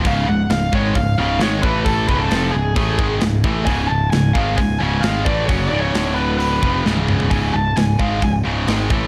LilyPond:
<<
  \new Staff \with { instrumentName = "Lead electric guitar" } { \time 4/4 \tempo 4 = 132 eis''8 fis''8 eis''8 cis''8 eis''8 eis''8 cis''8 b'8 | a'8 b'16 a'8. gis'8 gis'4 r4 | gis''8 a''8 gis''8 eis''8 gis''8 gis''8 eis''8 d''8 | cis''8 d''16 cis''8. b'8 b'4 r4 |
gis''8 a''8 gis''8 eis''8 gis''8 r4. | }
  \new Staff \with { instrumentName = "Distorted electric guitar" } { \clef bass \time 4/4 <cis, gis, cis>8 <cis, gis,>8 <cis, gis,>8 <gis, dis gis>8 <cis, gis,>8 <cis, gis, cis>8 <gis, dis gis>8 <a, e a>8~ | <a, e a>8 <cis, gis, cis>8 <eis, bis, eis>8 <cis, gis,>8 <a, e a>8 <gis, dis gis>8 <cis, gis,>8 <a, e a>8 | <cis, gis, cis>8 <cis, gis,>8 <cis, gis,>8 <gis, dis gis>8 <cis, gis,>8 <cis, gis, cis>8 <gis, dis gis>8 <a, e a>8 | <fis, cis fis>8 <cis, gis, cis>8 <d, a, d>4. <eis, bis, eis>8 <cis, gis, cis>4 |
<cis, gis, cis>8 <cis, gis,>8 <cis, gis,>8 <gis, dis gis>8 <cis, gis,>8 <cis, gis, cis>8 <gis, dis gis>8 <a, e a>8 | }
  \new Staff \with { instrumentName = "Distorted electric guitar" } { \clef bass \time 4/4 <cis, gis, cis>8 <cis, gis,>8 <cis, gis,>8 <gis, dis gis>8 <cis, gis,>8 <cis, gis, cis>8 <gis, dis gis>8 <a, e a>8~ | <a, e a>8 <cis, gis, cis>8 <eis, bis, eis>8 <cis, gis,>8 <a, e a>8 <gis, dis gis>8 <cis, gis,>8 <a, e a>8 | <cis, gis, cis>8 <cis, gis,>8 <cis, gis,>8 <gis, dis gis>8 <cis, gis,>8 <cis, gis, cis>8 <gis, dis gis>8 <a, e a>8 | <fis, cis fis>8 <cis, gis, cis>8 <d, a, d>4. <eis, bis, eis>8 <cis, gis, cis>4 |
<cis, gis, cis>8 <cis, gis,>8 <cis, gis,>8 <gis, dis gis>8 <cis, gis,>8 <cis, gis, cis>8 <gis, dis gis>8 <a, e a>8 | }
  \new Staff \with { instrumentName = "Picked electric bass" } { \clef bass \time 4/4 cis,,8 cis,,8 cis,,8 gis,,8 cis,,8 cis,,8 gis,,8 a,,8~ | a,,8 cis,,8 eis,,8 cis,,8 a,,8 gis,,8 cis,,8 a,,8 | cis,,8 cis,,8 cis,,8 gis,,8 cis,,8 cis,,8 gis,,8 a,,8 | fis,,8 cis,,8 d,,4. eis,,8 cis,,4 |
cis,,8 cis,,8 cis,,8 gis,,8 cis,,8 cis,,8 gis,,8 a,,8 | }
  \new DrumStaff \with { instrumentName = "Drums" } \drummode { \time 4/4 <hho bd>4 <hho sn>8 bd8 <hho bd>4 <hho sn>8 bd8 | <hho bd>8 bd8 <hho sn>4 <hho bd>8 bd8 <hho sn>8 bd8 | <hho bd>4 <hho sn>8 bd8 <hho bd>4 <hho sn>8 bd8 | <hho bd>4 <hho sn>4 hho8 bd8 sn16 tommh16 toml16 tomfh16 |
<hho bd>4 <hho sn>8 bd8 <hho bd>4 <hho sn>8 bd8 | }
>>